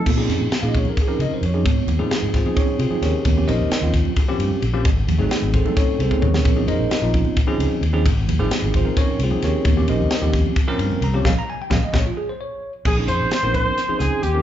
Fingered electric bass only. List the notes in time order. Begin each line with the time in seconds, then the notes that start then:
0.06 A#2
0.29 F2
0.40 A#2
0.52 muted fingered electric bass stroke
0.63 A#2
1.08 muted fingered electric bass stroke
1.19 C#3
1.30 muted fingered electric bass stroke
1.42 F2
1.65 G#2
1.87 D#2
1.99 G#2
2.11 muted fingered electric bass stroke
2.22 G#2
2.68 muted fingered electric bass stroke
2.79 C3
2.90 muted fingered electric bass stroke
3.01 D#2
3.25 D#2
3.47 A#1
3.59 D#2
3.71 muted fingered electric bass stroke
3.82 D#2
4.28 muted fingered electric bass stroke
4.39 G2
4.50 muted fingered electric bass stroke
4.62 A#1
4.85 G#1
5.07 D#2
5.19 G#1
5.31 muted fingered electric bass stroke
5.42 G#1
5.87 muted fingered electric bass stroke
5.99 C2
6.11 muted fingered electric bass stroke
6.22 D#2
6.45 A#1
6.67 F2
6.78 A#1
6.90 muted fingered electric bass stroke
7.02 A#1
7.48 muted fingered electric bass stroke
7.58 C#2
7.81 D#2
8.05 G#1
8.28 D#2
8.38 G#1
8.50 muted fingered electric bass stroke
8.62 G#1
9.08 muted fingered electric bass stroke
9.19 C2
9.31 muted fingered electric bass stroke
9.43 D#2
9.65 D#2
9.89 A#1
10.00 D#2
10.22 D#2
10.68 muted fingered electric bass stroke
10.79 G2
10.90 muted fingered electric bass stroke
11.01 C2
11.25 A#1
11.71 A#1
11.94 A#1
12.85 A#1
13.08 F2
13.20 A#1
13.31 muted fingered electric bass stroke
13.43 A#1
13.89 muted fingered electric bass stroke
14.00 C#2
14.23 D#2